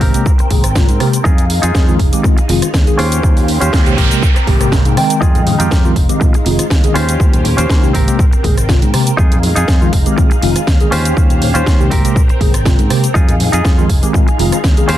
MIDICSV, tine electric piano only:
0, 0, Header, 1, 2, 480
1, 0, Start_track
1, 0, Key_signature, -4, "minor"
1, 0, Tempo, 495868
1, 1211, Time_signature, 4, 2, 24, 8
1, 14499, End_track
2, 0, Start_track
2, 0, Title_t, "Tine electric piano"
2, 0, Program_c, 0, 4
2, 0, Note_on_c, 0, 48, 86
2, 0, Note_on_c, 0, 56, 78
2, 0, Note_on_c, 0, 58, 78
2, 0, Note_on_c, 0, 67, 92
2, 107, Note_off_c, 0, 48, 0
2, 108, Note_off_c, 0, 56, 0
2, 110, Note_off_c, 0, 58, 0
2, 111, Note_off_c, 0, 67, 0
2, 137, Note_on_c, 0, 48, 81
2, 139, Note_on_c, 0, 56, 69
2, 142, Note_on_c, 0, 58, 73
2, 145, Note_on_c, 0, 67, 88
2, 227, Note_off_c, 0, 48, 0
2, 228, Note_off_c, 0, 56, 0
2, 229, Note_off_c, 0, 58, 0
2, 231, Note_off_c, 0, 67, 0
2, 487, Note_on_c, 0, 48, 79
2, 490, Note_on_c, 0, 56, 73
2, 492, Note_on_c, 0, 58, 72
2, 495, Note_on_c, 0, 68, 86
2, 590, Note_off_c, 0, 48, 0
2, 591, Note_off_c, 0, 56, 0
2, 593, Note_off_c, 0, 58, 0
2, 594, Note_off_c, 0, 68, 0
2, 728, Note_on_c, 0, 48, 75
2, 730, Note_on_c, 0, 56, 67
2, 732, Note_on_c, 0, 58, 67
2, 735, Note_on_c, 0, 65, 84
2, 830, Note_off_c, 0, 48, 0
2, 832, Note_off_c, 0, 56, 0
2, 833, Note_off_c, 0, 58, 0
2, 834, Note_off_c, 0, 65, 0
2, 968, Note_on_c, 0, 48, 78
2, 972, Note_on_c, 0, 56, 72
2, 974, Note_on_c, 0, 58, 72
2, 976, Note_on_c, 0, 67, 86
2, 1127, Note_off_c, 0, 48, 0
2, 1129, Note_off_c, 0, 56, 0
2, 1130, Note_off_c, 0, 58, 0
2, 1131, Note_off_c, 0, 67, 0
2, 1814, Note_on_c, 0, 51, 90
2, 1816, Note_on_c, 0, 56, 84
2, 1820, Note_on_c, 0, 60, 86
2, 1822, Note_on_c, 0, 65, 99
2, 1905, Note_off_c, 0, 51, 0
2, 1907, Note_off_c, 0, 56, 0
2, 1908, Note_off_c, 0, 60, 0
2, 1909, Note_off_c, 0, 65, 0
2, 2055, Note_on_c, 0, 51, 88
2, 2058, Note_on_c, 0, 56, 84
2, 2061, Note_on_c, 0, 60, 83
2, 2063, Note_on_c, 0, 67, 99
2, 2146, Note_off_c, 0, 51, 0
2, 2148, Note_off_c, 0, 56, 0
2, 2149, Note_off_c, 0, 60, 0
2, 2150, Note_off_c, 0, 67, 0
2, 2169, Note_on_c, 0, 51, 84
2, 2172, Note_on_c, 0, 56, 80
2, 2174, Note_on_c, 0, 60, 77
2, 2177, Note_on_c, 0, 65, 93
2, 2271, Note_off_c, 0, 51, 0
2, 2272, Note_off_c, 0, 56, 0
2, 2273, Note_off_c, 0, 60, 0
2, 2275, Note_off_c, 0, 65, 0
2, 2409, Note_on_c, 0, 51, 76
2, 2412, Note_on_c, 0, 56, 69
2, 2416, Note_on_c, 0, 60, 68
2, 2418, Note_on_c, 0, 65, 84
2, 2568, Note_off_c, 0, 51, 0
2, 2569, Note_off_c, 0, 56, 0
2, 2571, Note_off_c, 0, 60, 0
2, 2572, Note_off_c, 0, 65, 0
2, 2775, Note_on_c, 0, 51, 83
2, 2779, Note_on_c, 0, 56, 75
2, 2781, Note_on_c, 0, 60, 76
2, 2784, Note_on_c, 0, 68, 92
2, 2876, Note_off_c, 0, 51, 0
2, 2878, Note_off_c, 0, 56, 0
2, 2879, Note_off_c, 0, 60, 0
2, 2880, Note_off_c, 0, 68, 0
2, 3734, Note_on_c, 0, 48, 87
2, 3737, Note_on_c, 0, 56, 81
2, 3740, Note_on_c, 0, 58, 82
2, 3743, Note_on_c, 0, 67, 100
2, 3946, Note_off_c, 0, 48, 0
2, 3948, Note_off_c, 0, 56, 0
2, 3949, Note_off_c, 0, 58, 0
2, 3950, Note_off_c, 0, 67, 0
2, 3976, Note_on_c, 0, 48, 80
2, 3979, Note_on_c, 0, 56, 70
2, 3981, Note_on_c, 0, 58, 69
2, 3984, Note_on_c, 0, 67, 89
2, 4066, Note_off_c, 0, 48, 0
2, 4068, Note_off_c, 0, 56, 0
2, 4069, Note_off_c, 0, 58, 0
2, 4070, Note_off_c, 0, 67, 0
2, 4327, Note_on_c, 0, 48, 79
2, 4329, Note_on_c, 0, 56, 72
2, 4333, Note_on_c, 0, 58, 73
2, 4335, Note_on_c, 0, 67, 90
2, 4430, Note_off_c, 0, 48, 0
2, 4431, Note_off_c, 0, 56, 0
2, 4433, Note_off_c, 0, 58, 0
2, 4434, Note_off_c, 0, 67, 0
2, 4452, Note_on_c, 0, 48, 86
2, 4455, Note_on_c, 0, 56, 76
2, 4458, Note_on_c, 0, 58, 78
2, 4461, Note_on_c, 0, 67, 93
2, 4541, Note_off_c, 0, 48, 0
2, 4542, Note_off_c, 0, 56, 0
2, 4544, Note_off_c, 0, 58, 0
2, 4545, Note_off_c, 0, 67, 0
2, 4566, Note_on_c, 0, 48, 90
2, 4569, Note_on_c, 0, 56, 86
2, 4572, Note_on_c, 0, 58, 88
2, 4575, Note_on_c, 0, 70, 103
2, 4669, Note_off_c, 0, 48, 0
2, 4671, Note_off_c, 0, 56, 0
2, 4672, Note_off_c, 0, 58, 0
2, 4674, Note_off_c, 0, 70, 0
2, 4695, Note_on_c, 0, 48, 73
2, 4698, Note_on_c, 0, 56, 66
2, 4701, Note_on_c, 0, 58, 68
2, 4703, Note_on_c, 0, 68, 83
2, 4793, Note_off_c, 0, 48, 0
2, 4794, Note_off_c, 0, 56, 0
2, 4796, Note_off_c, 0, 58, 0
2, 4796, Note_off_c, 0, 68, 0
2, 4804, Note_on_c, 0, 51, 93
2, 4809, Note_on_c, 0, 56, 85
2, 4814, Note_on_c, 0, 60, 85
2, 4819, Note_on_c, 0, 79, 101
2, 5624, Note_off_c, 0, 51, 0
2, 5627, Note_off_c, 0, 56, 0
2, 5630, Note_off_c, 0, 60, 0
2, 5632, Note_off_c, 0, 79, 0
2, 5655, Note_on_c, 0, 51, 91
2, 5658, Note_on_c, 0, 56, 85
2, 5661, Note_on_c, 0, 60, 85
2, 5663, Note_on_c, 0, 65, 104
2, 5746, Note_off_c, 0, 51, 0
2, 5747, Note_off_c, 0, 56, 0
2, 5749, Note_off_c, 0, 60, 0
2, 5750, Note_off_c, 0, 65, 0
2, 5892, Note_on_c, 0, 51, 92
2, 5895, Note_on_c, 0, 56, 83
2, 5897, Note_on_c, 0, 60, 87
2, 5899, Note_on_c, 0, 67, 98
2, 5984, Note_off_c, 0, 51, 0
2, 5986, Note_off_c, 0, 56, 0
2, 5987, Note_off_c, 0, 60, 0
2, 5988, Note_off_c, 0, 67, 0
2, 6006, Note_on_c, 0, 51, 82
2, 6008, Note_on_c, 0, 56, 78
2, 6013, Note_on_c, 0, 60, 75
2, 6015, Note_on_c, 0, 65, 91
2, 6109, Note_off_c, 0, 51, 0
2, 6111, Note_off_c, 0, 56, 0
2, 6113, Note_off_c, 0, 60, 0
2, 6114, Note_off_c, 0, 65, 0
2, 6245, Note_on_c, 0, 51, 78
2, 6247, Note_on_c, 0, 56, 71
2, 6250, Note_on_c, 0, 60, 71
2, 6253, Note_on_c, 0, 65, 87
2, 6406, Note_off_c, 0, 51, 0
2, 6407, Note_off_c, 0, 56, 0
2, 6408, Note_off_c, 0, 60, 0
2, 6410, Note_off_c, 0, 65, 0
2, 6614, Note_on_c, 0, 51, 85
2, 6618, Note_on_c, 0, 56, 75
2, 6619, Note_on_c, 0, 60, 73
2, 6622, Note_on_c, 0, 68, 94
2, 6715, Note_off_c, 0, 51, 0
2, 6717, Note_off_c, 0, 56, 0
2, 6718, Note_off_c, 0, 60, 0
2, 6719, Note_off_c, 0, 68, 0
2, 7573, Note_on_c, 0, 48, 89
2, 7575, Note_on_c, 0, 56, 82
2, 7579, Note_on_c, 0, 58, 81
2, 7581, Note_on_c, 0, 67, 96
2, 7785, Note_off_c, 0, 48, 0
2, 7786, Note_off_c, 0, 56, 0
2, 7788, Note_off_c, 0, 58, 0
2, 7789, Note_off_c, 0, 67, 0
2, 7814, Note_on_c, 0, 48, 77
2, 7816, Note_on_c, 0, 56, 74
2, 7820, Note_on_c, 0, 58, 74
2, 7821, Note_on_c, 0, 67, 86
2, 7905, Note_off_c, 0, 48, 0
2, 7907, Note_off_c, 0, 56, 0
2, 7908, Note_off_c, 0, 58, 0
2, 7909, Note_off_c, 0, 67, 0
2, 8167, Note_on_c, 0, 48, 77
2, 8169, Note_on_c, 0, 56, 73
2, 8171, Note_on_c, 0, 58, 68
2, 8174, Note_on_c, 0, 68, 86
2, 8270, Note_off_c, 0, 48, 0
2, 8271, Note_off_c, 0, 56, 0
2, 8272, Note_off_c, 0, 58, 0
2, 8274, Note_off_c, 0, 68, 0
2, 8406, Note_on_c, 0, 48, 75
2, 8408, Note_on_c, 0, 56, 71
2, 8410, Note_on_c, 0, 58, 69
2, 8413, Note_on_c, 0, 65, 84
2, 8509, Note_off_c, 0, 48, 0
2, 8510, Note_off_c, 0, 56, 0
2, 8511, Note_off_c, 0, 58, 0
2, 8513, Note_off_c, 0, 65, 0
2, 8646, Note_on_c, 0, 48, 78
2, 8650, Note_on_c, 0, 56, 72
2, 8652, Note_on_c, 0, 58, 70
2, 8655, Note_on_c, 0, 67, 85
2, 8806, Note_off_c, 0, 48, 0
2, 8808, Note_off_c, 0, 56, 0
2, 8809, Note_off_c, 0, 58, 0
2, 8810, Note_off_c, 0, 67, 0
2, 9495, Note_on_c, 0, 51, 93
2, 9498, Note_on_c, 0, 56, 82
2, 9500, Note_on_c, 0, 60, 85
2, 9503, Note_on_c, 0, 65, 101
2, 9586, Note_off_c, 0, 51, 0
2, 9587, Note_off_c, 0, 56, 0
2, 9589, Note_off_c, 0, 60, 0
2, 9590, Note_off_c, 0, 65, 0
2, 9735, Note_on_c, 0, 51, 90
2, 9737, Note_on_c, 0, 56, 81
2, 9741, Note_on_c, 0, 60, 85
2, 9743, Note_on_c, 0, 67, 97
2, 9826, Note_off_c, 0, 51, 0
2, 9827, Note_off_c, 0, 56, 0
2, 9829, Note_off_c, 0, 60, 0
2, 9830, Note_off_c, 0, 67, 0
2, 9846, Note_on_c, 0, 51, 85
2, 9848, Note_on_c, 0, 56, 79
2, 9851, Note_on_c, 0, 60, 79
2, 9854, Note_on_c, 0, 65, 92
2, 9950, Note_off_c, 0, 51, 0
2, 9951, Note_off_c, 0, 56, 0
2, 9952, Note_off_c, 0, 60, 0
2, 9954, Note_off_c, 0, 65, 0
2, 10086, Note_on_c, 0, 51, 77
2, 10089, Note_on_c, 0, 56, 67
2, 10091, Note_on_c, 0, 60, 69
2, 10094, Note_on_c, 0, 65, 85
2, 10246, Note_off_c, 0, 51, 0
2, 10247, Note_off_c, 0, 56, 0
2, 10248, Note_off_c, 0, 60, 0
2, 10250, Note_off_c, 0, 65, 0
2, 10454, Note_on_c, 0, 51, 83
2, 10457, Note_on_c, 0, 56, 77
2, 10460, Note_on_c, 0, 60, 76
2, 10463, Note_on_c, 0, 68, 91
2, 10556, Note_off_c, 0, 51, 0
2, 10557, Note_off_c, 0, 56, 0
2, 10558, Note_off_c, 0, 60, 0
2, 10560, Note_off_c, 0, 68, 0
2, 11414, Note_on_c, 0, 48, 88
2, 11417, Note_on_c, 0, 56, 83
2, 11419, Note_on_c, 0, 58, 81
2, 11422, Note_on_c, 0, 67, 97
2, 11626, Note_off_c, 0, 48, 0
2, 11627, Note_off_c, 0, 56, 0
2, 11628, Note_off_c, 0, 58, 0
2, 11630, Note_off_c, 0, 67, 0
2, 11653, Note_on_c, 0, 48, 81
2, 11657, Note_on_c, 0, 56, 73
2, 11659, Note_on_c, 0, 58, 74
2, 11662, Note_on_c, 0, 67, 87
2, 11745, Note_off_c, 0, 48, 0
2, 11747, Note_off_c, 0, 56, 0
2, 11748, Note_off_c, 0, 58, 0
2, 11749, Note_off_c, 0, 67, 0
2, 12005, Note_on_c, 0, 48, 77
2, 12008, Note_on_c, 0, 56, 72
2, 12011, Note_on_c, 0, 58, 71
2, 12013, Note_on_c, 0, 68, 87
2, 12109, Note_off_c, 0, 48, 0
2, 12111, Note_off_c, 0, 56, 0
2, 12112, Note_off_c, 0, 58, 0
2, 12113, Note_off_c, 0, 68, 0
2, 12246, Note_on_c, 0, 48, 76
2, 12249, Note_on_c, 0, 56, 68
2, 12251, Note_on_c, 0, 58, 66
2, 12253, Note_on_c, 0, 65, 84
2, 12349, Note_off_c, 0, 48, 0
2, 12351, Note_off_c, 0, 56, 0
2, 12352, Note_off_c, 0, 58, 0
2, 12353, Note_off_c, 0, 65, 0
2, 12485, Note_on_c, 0, 48, 77
2, 12488, Note_on_c, 0, 56, 71
2, 12490, Note_on_c, 0, 58, 69
2, 12493, Note_on_c, 0, 67, 85
2, 12645, Note_off_c, 0, 48, 0
2, 12647, Note_off_c, 0, 56, 0
2, 12648, Note_off_c, 0, 58, 0
2, 12649, Note_off_c, 0, 67, 0
2, 13334, Note_on_c, 0, 51, 90
2, 13337, Note_on_c, 0, 56, 85
2, 13339, Note_on_c, 0, 60, 85
2, 13341, Note_on_c, 0, 65, 106
2, 13425, Note_off_c, 0, 51, 0
2, 13427, Note_off_c, 0, 56, 0
2, 13428, Note_off_c, 0, 60, 0
2, 13429, Note_off_c, 0, 65, 0
2, 13575, Note_on_c, 0, 51, 91
2, 13577, Note_on_c, 0, 56, 81
2, 13580, Note_on_c, 0, 60, 81
2, 13582, Note_on_c, 0, 67, 102
2, 13666, Note_off_c, 0, 51, 0
2, 13667, Note_off_c, 0, 56, 0
2, 13669, Note_off_c, 0, 60, 0
2, 13670, Note_off_c, 0, 67, 0
2, 13687, Note_on_c, 0, 51, 86
2, 13689, Note_on_c, 0, 56, 76
2, 13692, Note_on_c, 0, 60, 77
2, 13695, Note_on_c, 0, 65, 93
2, 13790, Note_off_c, 0, 51, 0
2, 13791, Note_off_c, 0, 56, 0
2, 13792, Note_off_c, 0, 60, 0
2, 13794, Note_off_c, 0, 65, 0
2, 13928, Note_on_c, 0, 51, 74
2, 13930, Note_on_c, 0, 56, 71
2, 13932, Note_on_c, 0, 60, 69
2, 13935, Note_on_c, 0, 65, 82
2, 14087, Note_off_c, 0, 51, 0
2, 14088, Note_off_c, 0, 56, 0
2, 14089, Note_off_c, 0, 60, 0
2, 14090, Note_off_c, 0, 65, 0
2, 14296, Note_on_c, 0, 51, 81
2, 14299, Note_on_c, 0, 56, 78
2, 14302, Note_on_c, 0, 60, 79
2, 14305, Note_on_c, 0, 68, 94
2, 14396, Note_off_c, 0, 51, 0
2, 14398, Note_off_c, 0, 56, 0
2, 14399, Note_off_c, 0, 60, 0
2, 14401, Note_off_c, 0, 68, 0
2, 14499, End_track
0, 0, End_of_file